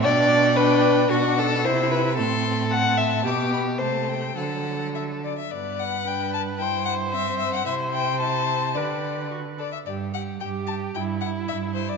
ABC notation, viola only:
X:1
M:2/4
L:1/8
Q:1/4=111
K:Glyd
V:1 name="Viola"
D2 D2 | [K:G] D2 E2 | C4 | B,2 A,2 |
F,3 z | B4 | c4 | c4 |
B3 z | z2 G2 | E4 |]